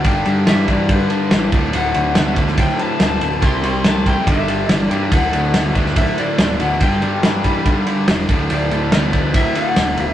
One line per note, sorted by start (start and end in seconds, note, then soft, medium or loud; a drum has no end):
0.04 0.23 G1 medium
0.04 0.23 G2 medium
0.04 0.24 D3 loud
0.04 0.65 G3 loud
0.04 0.48 G5 medium
0.04 kick loud
0.04 ride medium
0.25 0.45 G2 medium
0.25 0.99 G2 medium
0.25 0.45 D3 medium
0.25 ride medium
0.47 0.66 G2 medium
0.47 0.66 E3 loud
0.47 0.68 E5 medium
0.47 snare loud
0.47 ride medium
0.67 0.87 G2 medium
0.67 1.51 D3 medium
0.67 0.87 E3 medium
0.67 1.50 G3 medium
0.67 0.90 D5 medium
0.67 kick medium
0.67 ride medium
0.89 1.08 G2 medium
0.89 1.08 D3 medium
0.89 1.49 B4 medium
0.89 kick loud
0.89 ride medium
1.10 1.29 G2 medium
1.10 1.29 D3 medium
1.10 ride medium
1.31 1.49 A1 loud
1.31 1.50 G2 medium
1.31 1.50 E3 loud
1.31 snare loud
1.31 ride medium
1.52 1.71 D1 medium
1.52 1.72 D2 medium
1.52 1.72 A2 medium
1.52 2.16 D3 medium
1.52 kick loud
1.52 ride medium
1.73 1.92 D1 medium
1.73 1.93 D2 medium
1.73 1.93 A2 medium
1.73 2.34 F#5 loud
1.73 ride medium
1.94 2.67 D2 medium
1.94 2.14 D2 medium
1.94 2.14 A2 medium
1.94 ride medium
2.15 2.35 D2 medium
2.15 3.21 A2 medium
2.15 2.36 B2 loud
2.15 3.22 D3 medium
2.15 snare loud
2.15 ride medium
2.36 2.56 D2 medium
2.36 2.57 B2 medium
2.36 kick medium
2.36 ride medium
2.47 snare soft
2.58 2.77 D2 medium
2.58 2.77 A2 loud
2.58 2.81 G5 loud
2.58 kick loud
2.58 ride medium
2.79 2.98 D2 medium
2.79 2.99 A2 medium
2.79 3.01 A5 loud
2.79 ride medium
3.00 3.18 D1 loud
3.00 3.19 D2 medium
3.00 3.20 B2 medium
3.00 3.44 A5 loud
3.00 snare loud
3.00 ride medium
3.21 3.39 D1 medium
3.21 3.41 D2 medium
3.21 3.41 B2 medium
3.21 ride medium
3.42 3.61 C2 medium
3.42 3.62 C3 medium
3.42 3.62 G3 medium
3.42 4.04 C4 loud
3.42 3.83 C6 loud
3.42 kick loud
3.42 ride medium
3.63 4.18 C2 medium
3.63 3.82 C3 medium
3.63 3.83 G3 medium
3.63 ride medium
3.84 4.04 C3 medium
3.84 4.04 A3 loud
3.84 4.07 A5 loud
3.84 snare loud
3.84 ride medium
4.05 4.25 C3 medium
4.05 4.26 G3 medium
4.05 4.25 A3 medium
4.05 4.26 C4 medium
4.05 4.29 G5 medium
4.05 kick medium
4.05 ride medium
4.27 4.63 G1 loud
4.27 4.46 G2 medium
4.27 4.46 D3 loud
4.27 4.88 G3 loud
4.27 4.74 E5 loud
4.27 kick loud
4.27 ride medium
4.48 4.67 G2 medium
4.48 4.67 D3 medium
4.48 ride medium
4.68 4.87 G1 loud
4.68 4.88 G2 medium
4.68 4.88 E3 loud
4.68 snare loud
4.68 ride medium
4.74 4.87 D5 loud
4.90 5.08 G2 medium
4.90 5.09 G2 medium
4.90 5.11 D3 medium
4.90 5.09 E3 medium
4.90 5.10 G3 medium
4.90 ride medium
5.11 5.30 D1 medium
5.11 5.30 D2 medium
5.11 5.31 A2 medium
5.11 5.72 F#5 medium
5.11 kick loud
5.11 ride medium
5.15 5.74 D3 loud
5.31 5.51 D2 medium
5.31 6.06 D2 medium
5.31 5.52 A2 medium
5.31 ride medium
5.54 5.73 D2 medium
5.54 5.73 B2 loud
5.54 snare loud
5.54 ride loud
5.75 5.94 D2 medium
5.75 6.80 A2 medium
5.75 5.94 B2 medium
5.75 6.79 D3 medium
5.75 kick medium
5.75 ride medium
5.86 snare soft
5.96 6.15 D2 medium
5.96 6.16 A2 medium
5.96 6.18 E5 medium
5.96 kick loud
5.96 ride medium
6.18 6.37 D2 medium
6.18 6.37 A2 medium
6.18 6.61 D5 medium
6.18 ride medium
6.38 6.57 D1 loud
6.38 6.58 D2 medium
6.38 6.58 B2 medium
6.38 snare loud
6.38 ride medium
6.60 6.78 D2 medium
6.60 6.79 D2 medium
6.60 6.79 B2 medium
6.60 6.82 F#5 medium
6.60 ride medium
6.80 6.99 G1 medium
6.80 7.00 G2 medium
6.80 7.00 D3 medium
6.80 7.43 G3 medium
6.80 7.25 G5 medium
6.80 kick loud
6.80 ride medium
7.02 7.75 G2 medium
7.02 7.21 G2 medium
7.02 7.21 D3 medium
7.02 ride medium
7.23 7.42 G2 medium
7.23 7.42 E3 loud
7.23 8.04 B5 medium
7.23 snare loud
7.23 ride medium
7.44 7.63 G2 medium
7.44 8.28 D3 medium
7.44 7.64 E3 medium
7.44 8.27 G3 medium
7.44 kick medium
7.44 ride medium
7.65 7.84 G2 medium
7.65 7.85 D3 medium
7.65 kick loud
7.65 ride medium
7.86 8.05 G2 medium
7.86 8.05 D3 medium
7.86 ride medium
8.07 8.26 E1 loud
8.07 8.26 G2 medium
8.07 8.27 E3 medium
8.07 snare loud
8.07 ride medium
8.29 8.47 D1 medium
8.29 8.48 D2 medium
8.29 8.48 A2 medium
8.29 8.92 D3 loud
8.29 kick loud
8.29 ride medium
8.50 8.68 D1 loud
8.50 8.69 D2 medium
8.50 8.70 A2 medium
8.50 9.35 D5 medium
8.50 ride medium
8.71 9.43 D2 medium
8.71 8.90 D2 medium
8.71 8.91 A2 medium
8.71 ride medium
8.92 9.11 D2 medium
8.92 9.97 A2 medium
8.92 9.11 B2 loud
8.92 9.97 D3 medium
8.92 snare loud
8.92 ride medium
9.13 9.33 D2 medium
9.13 9.33 B2 medium
9.13 kick medium
9.13 ride medium
9.34 9.53 D2 medium
9.34 9.53 A2 loud
9.34 9.57 E5 loud
9.34 kick loud
9.34 ride medium
9.55 9.74 D2 medium
9.55 9.75 A2 medium
9.55 10.05 F#5 loud
9.55 ride medium
9.76 9.95 D1 loud
9.76 9.95 D2 medium
9.76 9.96 B2 loud
9.76 snare loud
9.76 ride medium
9.97 10.13 D1 medium
9.97 10.13 D2 medium
9.97 10.13 B2 medium
9.97 ride medium
10.05 10.13 E5 loud